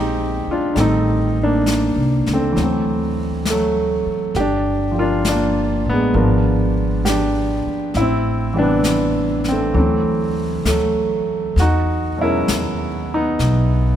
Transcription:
Already playing: A#1 D#3 F3 G#3 A#3 C4 D#4 G4 D5
0.47 muted upright bass stroke
0.51 D4 F4
0.74 A1 D#3 G3 C4 A4, brush sweep, snare
0.80 D#4
1.43 A#3 D4
1.66 snare, hi-hat pedal
1.96 C2
2.26 C#2, snare
2.33 A3 C4
2.52 D2 E3 F#3
2.57 A3, brush sweep, snare
2.63 C4
3.45 snare, hi-hat pedal
3.50 F#3 A3
4.06 muted upright bass stroke
4.34 G1 G4, brush sweep, snare
4.40 D4
4.91 F3 G4
4.98 D4 F4 A#4
5.25 D4, snare, hi-hat pedal
5.32 A#3
5.86 A1 B3
5.93 G#3
6.14 G#1 F3 B3 D4 A#4, brush sweep
7.05 G4, snare, hi-hat pedal
7.09 D4
7.66 muted upright bass stroke
7.94 A1 E4, brush sweep, snare
8.00 C4
8.53 E3 G3 B4
8.58 C3 B3 D4
8.84 snare, hi-hat pedal
9.44 snare
9.49 A3 C4
9.74 D2 E3 F#3 A3, brush sweep
9.78 C4
10.65 D2 A3, snare, hi-hat pedal
10.70 F#3
11.56 E2 F#4, brush sweep, snare
11.61 D#4
12.17 B2 F#3 G#3
12.21 C#4 E4 A#4
12.48 D#2, snare, hi-hat pedal
13.14 B3 D#4
13.39 B1, brush sweep, snare

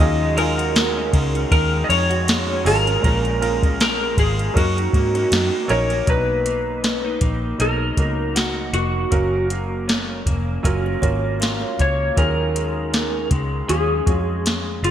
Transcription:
Already playing: A#3 C#4 F4 D#5
0.00 D#2 D#3 F#3 C#4 D#4 F4 G#4
0.21 G#3
0.36 F#3 C#4 D#4 F4 G#4 A#4, ride
0.58 F#4, ride
0.75 G#3, snare, ride
0.96 C#4
1.13 C#2 G#3, kick, ride
1.35 C#4, ride
1.51 D#2 D#3 A#4, kick, ride
1.73 G#3
1.84 D#5
1.89 F2 C#4 C#5, ride
2.10 F#4, ride
2.27 G#3, snare, ride
2.49 C#4
2.64 G#1 F#3 G#3 C#4 D#4 F4 G#4 A#4, open hi-hat, ride
2.87 C#4, ride
3.02 A#1 A#2 G#3 A#3 C#4 F4 A#4, kick, ride
3.25 F3, ride
3.40 G#3 A#3 C#4 F4 A#4, ride
3.63 C#4, kick, ride
3.80 F3 A#4, snare, ride
4.00 G#3
4.17 G#1 F3 G#4, kick, ride
4.39 G#3, ride
4.53 F#2 F#3 A#3 C#4 D#4 F#4 A#4, kick, ride
4.77 D#3, ride
4.93 G#2 A#3, kick, ride
5.15 C#4, ride
5.32 F#2 D#3, snare, ride
5.53 A#3
5.68 A#1 D#3 F#3 A#3 C#4 D#4 A#4 C#5, ride
5.90 A#3, ride
6.06 B1 F#3 B3 D4 B4 A#5, kick, closed hi-hat
6.14 D#4
6.46 A#3, closed hi-hat
6.83 C#4, snare, closed hi-hat
7.04 D#4
7.21 A#1 A#3, kick, closed hi-hat
7.58 B1 F#3 B3 D#4 A#4, closed hi-hat
7.97 C#2 F#3 A#3 B3 D#4 A#4, kick, closed hi-hat
8.36 F#4, snare, closed hi-hat
8.73 F1 A#3 F#4, closed hi-hat
9.10 F#1 F#3 C#4 A#4 F5, kick, closed hi-hat
9.50 A#3, closed hi-hat
9.88 C#4, snare, closed hi-hat
10.26 F1 A#3, kick, closed hi-hat
10.63 F#1 F#3 C#4 F4 F#4 A#4, kick, closed hi-hat
10.86 A#4
11.01 G#1 F#3 A#3 C#4 F4 A#4 C#5, kick, closed hi-hat
11.40 F4 A#4, snare, closed hi-hat
11.61 C#5
11.79 C#2 A#3 C#5, kick, closed hi-hat
12.16 D#2 D#3 F#3 C#4 F4 G#4 A#4, kick, closed hi-hat
12.55 G#3, closed hi-hat
12.93 C#4, snare, closed hi-hat
13.31 C#2 G#3, kick, closed hi-hat
13.68 D#2 F#3 C#4 F4 G#4, closed hi-hat
14.06 F2 G#3 C#4 F4 F#4 G#4, kick, closed hi-hat
14.46 snare, closed hi-hat
14.83 G#1 G#3 F4, closed hi-hat

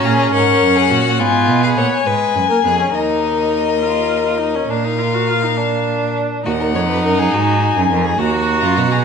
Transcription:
Already playing: C#4 A#5
0.04 A#2 G#4
0.32 G#2 A#4 F#5
0.61 F#2
0.76 G#4
0.90 A#2 F#4
1.19 G#2 B3 F4 G#5
1.48 B2
1.63 G#4 F5
1.77 A#2 C#5 F#5
1.92 G#5
2.06 G#2 G#3 B4
2.36 F#2
2.49 A#3 A#4
2.64 F2 B3 G#4
2.79 C#4
2.93 D#2 D#4 A#4 D#5
3.82 F4
4.26 F4
4.41 D#4
4.55 C#4
4.70 A#2 D4 A#4 F5
4.85 D#4
4.99 F4
5.14 F#4
5.28 F4
5.43 D#4
5.57 D4
6.45 D#2 D#4 F#4 F#5
6.60 A#4
6.74 F2 C#5
6.90 B4
7.03 F#2 A#4
7.19 G#4
7.32 G#2 F#4 G#5
7.76 F#2 G#4
7.91 F2 A#4
8.04 G#4
8.19 D#2 F#4 A#5
8.63 F#2 F4
8.77 B2 F#4
8.92 G#4

